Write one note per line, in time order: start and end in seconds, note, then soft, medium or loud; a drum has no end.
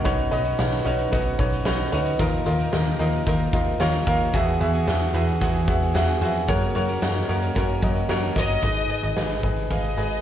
0.04 0.27 B1 loud
0.04 0.45 B2 medium
0.04 0.46 F#3 medium
0.04 0.46 C#4 medium
0.04 0.27 D#4 loud
0.04 0.45 D#4 medium
0.04 0.43 F#4 medium
0.04 0.27 B4 loud
0.04 0.27 C#5 loud
0.04 kick medium
0.04 closed hi-hat medium
0.04 tambourine soft
0.19 closed hi-hat soft
0.31 0.54 B1 medium
0.31 0.54 D#4 loud
0.31 0.54 B4 medium
0.31 0.54 D#5 loud
0.31 closed hi-hat medium
0.31 tambourine medium
0.45 0.84 C#4 medium
0.45 0.85 D#4 medium
0.45 0.85 F#4 medium
0.45 closed hi-hat soft
0.58 0.81 B1 medium
0.58 0.81 D#4 medium
0.58 0.81 B4 medium
0.58 0.81 C#5 medium
0.58 snare loud
0.58 tambourine medium
0.72 snare soft
0.72 closed hi-hat soft
0.85 1.08 B1 medium
0.85 1.10 F#3 medium
0.85 1.11 C#4 medium
0.85 1.08 D#4 medium
0.85 1.12 D#4 medium
0.85 1.13 F#4 medium
0.85 1.08 B4 medium
0.85 1.08 C#5 medium
0.85 closed hi-hat medium
0.85 tambourine medium
0.99 closed hi-hat medium
1.11 1.35 B1 loud
1.11 1.64 F#3 medium
1.11 1.65 C#4 medium
1.11 1.34 D#4 medium
1.11 1.67 D#4 medium
1.11 1.67 F#4 medium
1.11 1.34 B4 medium
1.11 1.35 D#5 medium
1.11 kick medium
1.11 closed hi-hat medium
1.11 tambourine medium
1.39 1.61 B1 loud
1.39 1.61 D#4 medium
1.39 1.61 B4 medium
1.39 1.61 C#5 medium
1.39 kick medium
1.39 closed hi-hat medium
1.53 closed hi-hat medium
1.65 1.88 B1 medium
1.65 1.91 F#3 medium
1.65 1.92 C#4 medium
1.65 1.88 D#4 loud
1.65 1.93 D#4 medium
1.65 1.93 F#4 medium
1.65 1.88 B4 loud
1.65 1.88 C#5 loud
1.65 snare loud
1.65 tambourine medium
1.92 2.15 D2 medium
1.92 2.19 F#3 medium
1.92 2.20 C#4 medium
1.92 2.14 D#4 medium
1.92 2.20 D#4 medium
1.92 2.21 F#4 medium
1.92 2.15 B4 medium
1.92 2.15 C#5 medium
1.92 closed hi-hat medium
1.92 tambourine soft
2.06 closed hi-hat medium
2.19 2.41 D#2 loud
2.19 2.96 A#2 medium
2.19 2.60 D#3 medium
2.19 2.60 F3 medium
2.19 2.60 A#3 medium
2.19 2.59 D#4 loud
2.19 2.41 F4 loud
2.19 2.42 A#4 loud
2.19 2.58 A#4 loud
2.19 2.42 D#5 loud
2.19 kick loud
2.19 closed hi-hat loud
2.33 closed hi-hat soft
2.46 2.68 D#2 medium
2.46 2.68 F4 loud
2.46 2.68 A#4 loud
2.46 2.68 D#5 loud
2.46 closed hi-hat medium
2.46 tambourine medium
2.59 2.99 A#3 soft
2.59 3.00 D#4 medium
2.59 3.00 A#4 medium
2.59 closed hi-hat soft
2.72 2.95 D#2 medium
2.72 2.95 F4 medium
2.72 2.95 A#4 medium
2.72 2.95 D#5 medium
2.72 snare loud
2.72 tambourine medium
2.86 closed hi-hat soft
2.99 3.22 D#2 medium
2.99 3.25 F3 medium
2.99 3.26 A#3 medium
2.99 3.27 D#4 medium
2.99 3.22 F4 medium
2.99 3.22 A#4 medium
2.99 3.28 A#4 medium
2.99 3.22 D#5 medium
2.99 closed hi-hat medium
2.99 tambourine soft
3.12 closed hi-hat medium
3.26 3.49 D#2 loud
3.26 3.79 F3 medium
3.26 3.80 A#3 medium
3.26 3.81 D#4 medium
3.26 3.48 F4 medium
3.26 3.49 A#4 medium
3.26 3.81 A#4 medium
3.26 3.49 D#5 medium
3.26 kick medium
3.26 closed hi-hat loud
3.26 tambourine medium
3.53 3.75 D#2 medium
3.53 3.75 F4 medium
3.53 3.75 A#4 medium
3.53 3.76 D#5 medium
3.53 kick medium
3.53 closed hi-hat medium
3.66 closed hi-hat medium
3.80 4.03 D#2 loud
3.80 4.05 F3 medium
3.80 4.06 A#3 medium
3.80 4.07 D#4 medium
3.80 4.02 F4 loud
3.80 4.02 A#4 medium
3.80 4.08 A#4 medium
3.80 4.02 C#5 loud
3.80 snare loud
3.80 tambourine medium
4.07 4.29 D#2 medium
4.07 4.33 F3 medium
4.07 4.34 A#3 medium
4.07 4.34 D#4 medium
4.07 4.29 F4 medium
4.07 4.29 A#4 medium
4.07 4.35 A#4 medium
4.07 4.29 F5 loud
4.07 kick medium
4.07 closed hi-hat medium
4.07 tambourine soft
4.20 closed hi-hat soft
4.33 4.56 E2 loud
4.33 5.11 B2 medium
4.33 4.74 E3 medium
4.33 4.74 B3 medium
4.33 4.56 F#4 loud
4.33 4.74 F#4 loud
4.33 4.56 G#4 loud
4.33 4.72 G#4 medium
4.33 4.56 E5 loud
4.33 kick loud
4.33 closed hi-hat medium
4.33 tambourine soft
4.48 closed hi-hat soft
4.60 4.83 E2 medium
4.60 4.83 F#4 loud
4.60 4.83 G#4 medium
4.60 4.83 E5 loud
4.60 closed hi-hat medium
4.60 tambourine soft
4.74 5.13 B3 medium
4.74 5.14 F#4 medium
4.74 5.14 G#4 medium
4.74 closed hi-hat soft
4.87 5.09 E2 loud
4.87 5.09 F#4 medium
4.87 5.10 G#4 medium
4.87 5.10 E5 medium
4.87 snare loud
4.87 tambourine medium
5.01 closed hi-hat soft
5.14 5.36 E2 medium
5.14 5.39 E3 medium
5.14 5.40 B3 medium
5.14 5.36 F#4 medium
5.14 5.41 F#4 medium
5.14 5.36 G#4 medium
5.14 5.41 G#4 medium
5.14 5.37 E5 medium
5.14 closed hi-hat medium
5.14 tambourine soft
5.27 closed hi-hat medium
5.40 5.63 E2 loud
5.40 5.93 E3 medium
5.40 5.94 B3 medium
5.40 5.63 F#4 medium
5.40 5.95 F#4 medium
5.40 5.63 G#4 medium
5.40 5.95 G#4 medium
5.40 5.63 F#5 medium
5.40 kick medium
5.40 closed hi-hat medium
5.40 tambourine medium
5.54 closed hi-hat soft
5.67 5.90 E2 medium
5.67 5.90 F#4 medium
5.67 5.90 G#4 medium
5.67 5.90 E5 medium
5.67 kick medium
5.67 closed hi-hat medium
5.67 tambourine soft
5.82 closed hi-hat medium
5.94 6.17 E2 loud
5.94 6.20 E3 medium
5.94 6.21 B3 medium
5.94 6.17 F#4 loud
5.94 6.21 F#4 medium
5.94 6.17 G#4 loud
5.94 6.22 G#4 medium
5.94 6.17 E5 loud
5.94 snare loud
5.94 tambourine medium
6.09 closed hi-hat soft
6.21 6.44 F2 medium
6.21 6.48 E3 medium
6.21 6.48 B3 medium
6.21 6.43 F#4 medium
6.21 6.49 F#4 medium
6.21 6.44 G#4 medium
6.21 6.49 G#4 medium
6.21 6.44 E5 medium
6.21 closed hi-hat medium
6.21 tambourine soft
6.35 closed hi-hat soft
6.48 6.88 F#2 medium
6.48 6.71 F#2 loud
6.48 6.89 C#3 medium
6.48 7.25 C#3 medium
6.48 6.89 F#3 medium
6.48 6.88 A#3 medium
6.48 6.88 C#4 medium
6.48 6.70 F#4 loud
6.48 6.70 A#4 loud
6.48 6.87 A#4 medium
6.48 6.70 C#5 loud
6.48 kick loud
6.48 closed hi-hat loud
6.48 tambourine soft
6.75 6.97 F#2 medium
6.75 6.97 F#4 loud
6.75 6.97 A#4 medium
6.75 6.97 C#5 loud
6.75 closed hi-hat medium
6.75 tambourine medium
6.88 7.27 F#3 soft
6.88 7.28 A#3 medium
6.88 7.29 C#4 medium
6.88 7.29 A#4 medium
6.88 closed hi-hat soft
7.02 7.24 F#2 loud
7.02 7.24 F#4 medium
7.02 7.24 A#4 medium
7.02 7.24 D#5 medium
7.02 snare loud
7.02 tambourine medium
7.15 snare soft
7.15 closed hi-hat soft
7.28 7.51 F#2 medium
7.28 7.54 F#3 medium
7.28 7.55 A#3 medium
7.28 7.56 C#4 medium
7.28 7.51 F#4 medium
7.28 7.51 A#4 medium
7.28 7.56 A#4 medium
7.28 7.51 C#5 medium
7.28 closed hi-hat medium
7.28 tambourine medium
7.42 closed hi-hat medium
7.55 7.78 F#2 loud
7.55 8.08 F#3 medium
7.55 8.08 A#3 medium
7.55 8.09 C#4 medium
7.55 7.77 F#4 medium
7.55 7.78 A#4 medium
7.55 8.10 A#4 medium
7.55 7.78 C#5 medium
7.55 kick medium
7.55 closed hi-hat medium
7.55 tambourine medium
7.82 8.05 F#2 loud
7.82 8.04 F#4 medium
7.82 8.05 A#4 medium
7.82 8.05 D#5 medium
7.82 kick medium
7.82 closed hi-hat medium
7.82 tambourine soft
7.96 closed hi-hat medium
8.09 8.31 F#2 loud
8.09 8.34 F#3 medium
8.09 8.35 A#3 medium
8.09 8.36 C#4 medium
8.09 8.31 F#4 loud
8.09 8.31 A#4 medium
8.09 8.37 A#4 medium
8.09 8.32 C#5 loud
8.09 snare loud
8.09 tambourine medium
8.35 8.58 G1 medium
8.35 8.63 F#3 medium
8.35 8.63 A#3 medium
8.35 8.64 C#4 medium
8.35 8.58 F#4 medium
8.35 8.58 A#4 medium
8.35 8.64 A#4 medium
8.35 8.58 D#5 medium
8.35 9.40 D#5 loud
8.35 kick medium
8.35 closed hi-hat medium
8.35 tambourine soft
8.49 closed hi-hat medium
8.62 8.85 G#1 loud
8.62 9.40 G#2 medium
8.62 9.40 D#3 medium
8.62 8.85 G#4 medium
8.62 8.85 B4 medium
8.62 8.85 D#5 medium
8.62 kick medium
8.62 closed hi-hat medium
8.76 closed hi-hat soft
8.89 9.11 G#4 medium
8.89 9.12 B4 medium
8.89 9.12 D#5 medium
8.89 closed hi-hat medium
9.03 9.14 G#1 medium
9.03 closed hi-hat soft
9.16 9.39 G#1 loud
9.16 9.38 G#4 medium
9.16 9.39 B4 medium
9.16 9.39 D#5 medium
9.16 snare loud
9.30 snare soft
9.30 closed hi-hat soft
9.43 9.65 G#1 medium
9.43 9.65 G#4 medium
9.43 9.66 B4 medium
9.43 9.66 D#5 medium
9.43 kick medium
9.43 closed hi-hat medium
9.56 closed hi-hat medium
9.70 9.93 G#1 medium
9.70 9.92 G#4 medium
9.70 9.92 B4 medium
9.70 10.21 D#5 medium
9.70 9.93 F5 medium
9.70 kick medium
9.70 closed hi-hat medium
9.84 closed hi-hat soft
9.97 10.19 G#1 medium
9.97 10.19 G#4 medium
9.97 10.19 B4 medium
9.97 10.19 D#5 medium
9.97 closed hi-hat medium
10.11 closed hi-hat soft